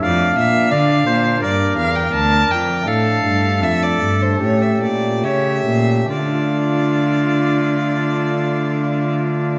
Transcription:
<<
  \new Staff \with { instrumentName = "Violin" } { \time 4/4 \key d \minor \tempo 4 = 74 d''8 e''8 f''4 d''8 f''16 g''16 a''8 g''8 | f''4 e''16 d''8 c''16 cis''16 e''16 d''8 e''4 | d''1 | }
  \new Staff \with { instrumentName = "Oboe" } { \time 4/4 \key d \minor f''4 d''8 c''8 bes'2 | a'4 a'4. r8 cis''8 r8 | f'1 | }
  \new Staff \with { instrumentName = "Pipe organ" } { \time 4/4 \key d \minor <a d' d''>2 <bes d' d''>2 | <a d' a'>2 <a cis' g'>2 | <d a d' f' d''>1 | }
  \new Staff \with { instrumentName = "Pipe organ" } { \clef bass \time 4/4 \key d \minor f,8 bes,8 d8 bes,8 g,8 e,8 d,8 f,8 | a,8 g,8 f,8 g,8 a,8 bes,8 cis8 bes,8 | r1 | }
  \new Staff \with { instrumentName = "Cello" } { \clef bass \time 4/4 \key d \minor f,8 bes,8 d8 bes,8 g,8 e,8 d,8 f,8 | a,8 g,8 f,8 g,8 a,8 bes,8 cis8 bes,8 | d1 | }
>>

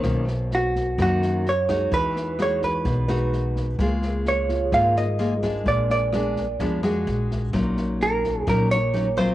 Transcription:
<<
  \new Staff \with { instrumentName = "Hollow-body jazz guitar" } { \time 4/4 \key des \major \tempo 4 = 128 r4 ges'4 ges'4 des''4 | b'4 des''8 b'4. r4 | r4 des''4 f''8 ees''4. | d''8 d''2 r4. |
r4 bes'4 bes'8 des''4 c''8 | }
  \new Staff \with { instrumentName = "Grand piano" } { \time 4/4 \key des \major <bes' c''>8 r2. r8 | r2 r8 b'4.~ | b'16 r4 r16 f'16 aes'16 bes'4.~ bes'16 r16 | r1 |
r1 | }
  \new Staff \with { instrumentName = "Nylon-string guitar" } { \time 4/4 \key des \major << { <ees bes des'>8 r4. <ees bes des'>4 r8 <aes ees' ges'>8~ | <aes ees' ges'>4 <gis dis' fis'>4. <gis dis' fis'>4. | <aes bes f'>2 <aes bes f'>8 r8 <aes bes f'>8 <aes d'>8~ | <aes d'>4 <aes ces' d'>8 r8 <aes ces' d'>8 <aes d' ges'>4. |
<ges des' ees'>2 <ges des' ees'>8 r8 <ges des' ees'>8 <ges c' f'>8 | } \\ { ces2 ges,2 | e2 b,2 | des2 aes,2 | bes,2 f4 r4 |
bes,2 bes,2 | } >> }
  \new Staff \with { instrumentName = "Upright bass" } { \clef bass \time 4/4 \key des \major ces,2 ges,2 | e,2 b,,2 | des,2 aes,,2 | bes,,2 f,4 bes,,4 |
bes,,2 bes,,2 | }
  \new DrumStaff \with { instrumentName = "Drums" } \drummode { \time 4/4 <bd ss sn>8 sn8 sn8 <bd sn>8 <bd ss sn>8 sn8 sn8 <bd ss sn>8 | <bd sn>8 sn8 <ss sn>8 <bd sn>8 <bd sn>8 <ss sn>8 sn8 <bd sn>8 | <bd ss sn>8 sn8 sn8 <bd sn>8 <bd ss sn>8 sn8 sn8 <bd ss sn>8 | <bd sn>8 sn8 <ss sn>8 <bd sn>8 <bd sn>8 <ss sn>8 sn8 <bd sn>8 |
<bd ss sn>8 sn8 sn8 <bd sn>8 <bd ss sn>8 sn8 sn8 <bd ss sn>8 | }
>>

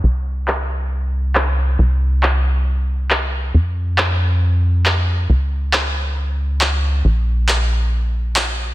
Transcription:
<<
  \new Staff \with { instrumentName = "Analog synth bass" } { \clef bass \time 4/4 \key c \phrygian \tempo 4 = 137 c,1 | c,1 | f,1 | des,1 |
bes,,1 | }
  \new DrumStaff \with { instrumentName = "Drums" } \drummode { \time 4/4 r4 hc4 r4 hc4 | r4 hc4 r4 hc4 | r4 hc4 r4 hc4 | r4 hc4 r4 hc4 |
r4 hc4 r4 hc4 | }
>>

